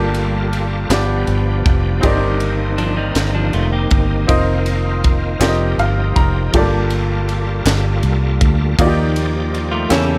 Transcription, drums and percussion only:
0.14 ride soft
0.53 ride soft
0.90 snare loud
0.90 clap medium
0.90 ride medium
1.27 ride soft
1.66 kick medium
1.66 ride soft
2.03 kick loud
2.03 ride medium
2.40 ride soft
2.78 ride soft
3.15 snare loud
3.15 clap medium
3.15 ride medium
3.53 ride soft
3.91 kick medium
3.91 ride soft
4.29 kick loud
4.29 ride medium
4.66 ride soft
5.04 kick medium
5.04 ride soft
5.41 snare loud
5.41 clap medium
5.41 ride medium
5.79 ride soft
6.16 kick medium
6.16 ride soft
6.54 kick loud
6.54 ride medium
6.90 ride soft
7.29 ride soft
7.66 snare loud
7.66 clap medium
7.66 ride medium
8.03 ride soft
8.41 kick medium
8.41 ride soft
8.79 kick loud
8.79 ride medium
9.16 ride medium
9.54 ride soft
9.91 snare loud
9.91 clap medium
9.91 ride medium

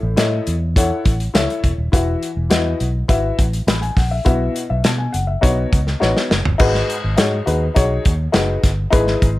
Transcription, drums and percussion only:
0.17 snare loud
0.17 closed hi-hat medium
0.47 closed hi-hat medium
0.76 kick medium
0.76 closed hi-hat loud
1.05 kick medium
1.05 closed hi-hat medium
1.20 closed hi-hat soft
1.35 snare loud
1.35 closed hi-hat medium
1.50 closed hi-hat soft
1.64 kick medium
1.64 closed hi-hat medium
1.93 kick medium
1.93 closed hi-hat medium
2.23 closed hi-hat medium
2.51 snare loud
2.51 closed hi-hat medium
2.80 closed hi-hat medium
3.09 kick medium
3.09 closed hi-hat medium
3.39 kick medium
3.39 closed hi-hat medium
3.53 closed hi-hat soft
3.68 snare loud
3.68 closed hi-hat medium
3.83 closed hi-hat soft
3.97 kick medium
3.97 snare soft
3.97 open hi-hat medium
4.26 kick loud
4.26 closed hi-hat medium
4.56 closed hi-hat medium
4.84 snare loud
4.84 closed hi-hat medium
5.14 closed hi-hat medium
5.43 kick loud
5.43 closed hi-hat medium
5.73 kick medium
5.73 closed hi-hat medium
5.87 snare soft
6.02 snare medium
6.17 snare medium
6.31 snare medium
6.45 floor tom medium
6.59 kick loud
6.59 crash medium
6.75 snare soft
6.90 closed hi-hat medium
7.18 snare medium
7.18 closed hi-hat medium
7.47 closed hi-hat medium
7.76 kick loud
7.76 closed hi-hat medium
8.05 kick medium
8.05 closed hi-hat medium
8.34 snare loud
8.34 closed hi-hat medium
8.63 kick medium
8.63 snare soft
8.63 closed hi-hat medium
8.93 kick loud
8.93 closed hi-hat medium
9.07 snare soft
9.22 kick medium
9.22 closed hi-hat medium

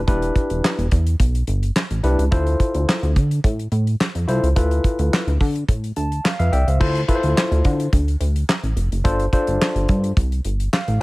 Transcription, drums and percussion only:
0.08 kick loud
0.08 closed hi-hat medium
0.22 closed hi-hat medium
0.36 kick medium
0.36 closed hi-hat medium
0.50 closed hi-hat medium
0.65 snare loud
0.65 clap medium
0.79 closed hi-hat soft
0.91 kick medium
0.91 closed hi-hat medium
1.07 closed hi-hat medium
1.20 kick loud
1.20 closed hi-hat medium
1.35 closed hi-hat medium
1.47 closed hi-hat medium
1.63 closed hi-hat medium
1.76 snare loud
1.76 clap medium
1.91 closed hi-hat medium
2.04 closed hi-hat medium
2.19 closed hi-hat medium
2.32 kick loud
2.32 closed hi-hat medium
2.47 closed hi-hat soft
2.60 kick medium
2.60 closed hi-hat medium
2.74 closed hi-hat medium
2.89 snare loud
2.89 clap medium
3.03 closed hi-hat soft
3.16 kick medium
3.16 closed hi-hat medium
3.31 closed hi-hat medium
3.44 kick loud
3.44 closed hi-hat medium
3.59 closed hi-hat soft
3.72 closed hi-hat medium
3.87 closed hi-hat medium
4.01 snare loud
4.01 clap medium
4.15 closed hi-hat soft
4.29 closed hi-hat medium
4.44 closed hi-hat medium
4.56 kick loud
4.56 closed hi-hat medium
4.71 closed hi-hat soft
4.84 kick medium
4.84 closed hi-hat medium
4.99 closed hi-hat medium
5.13 snare loud
5.13 clap loud
5.28 closed hi-hat soft
5.40 kick medium
5.40 open hi-hat medium
5.56 closed hi-hat medium
5.69 kick loud
5.69 closed hi-hat medium
5.84 closed hi-hat medium
5.96 closed hi-hat medium
6.12 closed hi-hat medium
6.25 snare loud
6.25 clap medium
6.40 closed hi-hat medium
6.53 closed hi-hat medium
6.68 closed hi-hat medium
6.81 kick loud
6.81 crash loud
6.95 closed hi-hat soft
7.09 kick medium
7.09 closed hi-hat medium
7.23 closed hi-hat medium
7.38 snare loud
7.38 clap medium
7.52 closed hi-hat soft
7.65 kick medium
7.65 closed hi-hat medium
7.80 closed hi-hat medium
7.93 kick loud
7.93 closed hi-hat medium
8.08 closed hi-hat soft
8.21 closed hi-hat medium
8.36 closed hi-hat medium
8.49 snare loud
8.49 clap medium
8.64 closed hi-hat medium
8.77 closed hi-hat medium
8.92 closed hi-hat medium
9.05 kick loud
9.05 closed hi-hat medium
9.20 closed hi-hat soft
9.33 kick medium
9.33 closed hi-hat medium
9.47 closed hi-hat medium
9.62 snare loud
9.62 clap medium
9.76 closed hi-hat medium
9.89 kick loud
9.89 closed hi-hat medium
10.04 closed hi-hat medium
10.17 kick loud
10.17 closed hi-hat medium
10.32 closed hi-hat soft
10.45 closed hi-hat medium
10.60 closed hi-hat medium
10.73 snare loud
10.73 clap medium
10.88 closed hi-hat medium

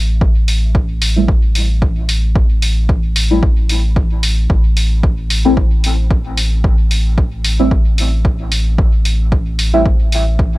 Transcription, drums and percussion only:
0.21 kick loud
0.48 open hi-hat medium
0.75 kick loud
1.02 open hi-hat medium
1.28 kick loud
1.55 open hi-hat medium
1.82 kick loud
2.09 open hi-hat medium
2.36 kick loud
2.62 open hi-hat medium
2.89 kick loud
3.16 open hi-hat medium
3.43 kick loud
3.69 open hi-hat medium
3.96 kick loud
4.23 open hi-hat medium
4.50 kick loud
4.77 open hi-hat medium
5.03 kick loud
5.30 open hi-hat medium
5.57 kick loud
5.84 open hi-hat medium
6.11 kick loud
6.37 open hi-hat medium
6.64 kick loud
6.91 open hi-hat medium
7.18 kick loud
7.45 open hi-hat medium
7.71 kick loud
7.98 open hi-hat medium
8.25 kick loud
8.52 open hi-hat medium
8.78 kick loud
9.05 open hi-hat medium
9.32 kick loud
9.59 open hi-hat medium
9.86 kick loud
10.12 open hi-hat medium
10.39 kick loud

